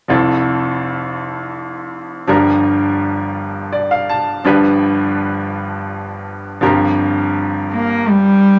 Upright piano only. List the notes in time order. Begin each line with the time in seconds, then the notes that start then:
0.08 F1 F2 F3 C4 E4 A4
2.27 G1 G2 F3 D4 G4 A#4
3.73 D5
3.91 F5
4.09 A5
4.45 G1 G2 F3 D4 G4 B4
6.61 G1 G2 F3 C4 G4 A#4